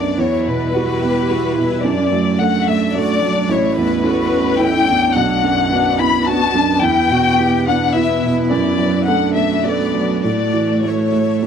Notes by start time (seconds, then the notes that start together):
Already playing: B1 F#2 F#3 B3 D4 F#4 D5
0.16 E2 G3 E4 C#5 E5
0.44 B2 B4
0.74 B3 E4 F#4 G4
1.01 B3 G4
1.29 B3 E4 F#4 G4
1.56 B2 E4
1.83 F#2 A3 D4 F#4 D5
2.12 F#3 A3
2.39 A3 D4 A4 F#5
2.65 A3 E5
2.94 A3 D4 F#4 A4 D5
3.22 F#3 D4
3.48 A1 E4 C#5
3.77 E2 B4
4.03 C#4 E4 F#4 A4
4.31 C#4
4.59 C#4 E4 A4 G5
4.88 E2 D4
5.14 B1 B3 D4 B4 F#5
5.44 F#2
5.70 B3 D4 F#4
5.99 B3 E4 B5
6.26 B3 D4 F#4 A5
6.54 F#2 D4
6.81 E2 E4 G5
7.10 B2 F#4
7.38 B3 E4 G4
7.67 B3 D4 F#5
7.94 B3 E4 E5
8.24 B2
8.50 F#2 A3 F#4 D5
8.79 F#3
9.07 A3 D4 A4 F#5
9.36 A3 E5
9.64 A3 B3 D4 A4 D5
9.94 F#3
10.23 A2 A3 E4 D5 E5
10.53 E3
10.83 A3 E4 A4 C#5
11.12 A3
11.43 A3 C#4 E4 A4